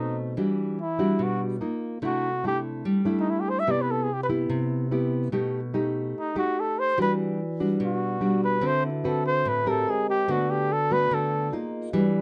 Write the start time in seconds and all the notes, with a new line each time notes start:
Already playing: B2 A3 C4 D#4 F#4 A4 C5 D#5
0.37 E3 G3 D4 F#4
0.81 E4
0.99 G3 D4 F#4
1.19 B2
1.23 F#4
1.61 A#3 D#4 F4
2.02 C3 A3 D4 E4
2.06 F#4
2.44 A3 D4 E4 G4
2.85 G3
3.05 A3 D4 E4
3.20 D#4
3.30 E4
3.40 G4
3.49 C5
3.60 E5
3.67 C3 B3 E4 G4 D5
3.82 B4
3.91 A4
4.03 G#4
4.13 G4
4.23 B4
4.29 B3 E4 G4
4.50 C3
4.91 B3 E4 G4
5.32 B2 A3 D#4 G4
5.74 A3 D#4 G4
6.19 D#4
6.36 A3 D#4 F#4 G4
6.60 A4
6.79 C5
6.95 E3 G3 D4 F#4 B4
7.00 B4 D5
7.60 G3 D4 F#4
7.80 B2
7.85 F#4
8.21 G3 D4 F#4
8.44 B4
8.60 D3 C4 F#4 A4 B4
8.66 C5 E5
8.86 E4
9.04 C4 F#4 A4 B4
9.26 C5
9.45 A2 B4
9.66 C4 G4 A4 A#4
9.85 G#3 G4 A#4 C5 D#5
9.90 G#4
10.10 G4
10.24 A3 F#4 A4
10.28 D3 B3 F#4 B4 D5
10.50 G4
10.73 A4
10.90 A3 B3 F#4 B4
11.11 D3 A4
11.51 A#3 D#4 F4 G#4 A#4 D#5
11.90 E3 G3 D4 F#4 B4
11.94 F#4 D5